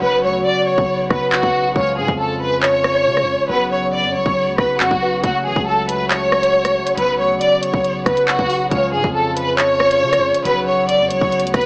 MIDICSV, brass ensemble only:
0, 0, Header, 1, 2, 480
1, 0, Start_track
1, 0, Tempo, 434783
1, 20, Time_signature, 4, 2, 24, 8
1, 12870, End_track
2, 0, Start_track
2, 0, Title_t, "Brass ensemble"
2, 0, Program_c, 0, 61
2, 0, Note_on_c, 0, 49, 80
2, 0, Note_on_c, 0, 54, 76
2, 0, Note_on_c, 0, 66, 90
2, 20, Note_on_c, 0, 59, 77
2, 1902, Note_off_c, 0, 54, 0
2, 1902, Note_off_c, 0, 66, 0
2, 1921, Note_off_c, 0, 59, 0
2, 1940, Note_on_c, 0, 53, 76
2, 1940, Note_on_c, 0, 56, 76
2, 1940, Note_on_c, 0, 65, 90
2, 3841, Note_off_c, 0, 53, 0
2, 3841, Note_off_c, 0, 56, 0
2, 3841, Note_off_c, 0, 65, 0
2, 3860, Note_on_c, 0, 54, 78
2, 3860, Note_on_c, 0, 66, 88
2, 3861, Note_on_c, 0, 59, 75
2, 5761, Note_off_c, 0, 59, 0
2, 5780, Note_on_c, 0, 57, 75
2, 7656, Note_off_c, 0, 49, 0
2, 7681, Note_off_c, 0, 57, 0
2, 7700, Note_on_c, 0, 49, 83
2, 7700, Note_on_c, 0, 59, 75
2, 9576, Note_off_c, 0, 54, 0
2, 9576, Note_off_c, 0, 66, 0
2, 9601, Note_off_c, 0, 59, 0
2, 9620, Note_on_c, 0, 53, 76
2, 9620, Note_on_c, 0, 56, 76
2, 9620, Note_on_c, 0, 65, 94
2, 11521, Note_off_c, 0, 53, 0
2, 11521, Note_off_c, 0, 56, 0
2, 11521, Note_off_c, 0, 65, 0
2, 11540, Note_on_c, 0, 54, 78
2, 11540, Note_on_c, 0, 59, 78
2, 11540, Note_on_c, 0, 66, 96
2, 12870, Note_off_c, 0, 49, 0
2, 12870, Note_off_c, 0, 54, 0
2, 12870, Note_off_c, 0, 59, 0
2, 12870, Note_off_c, 0, 66, 0
2, 12870, End_track
0, 0, End_of_file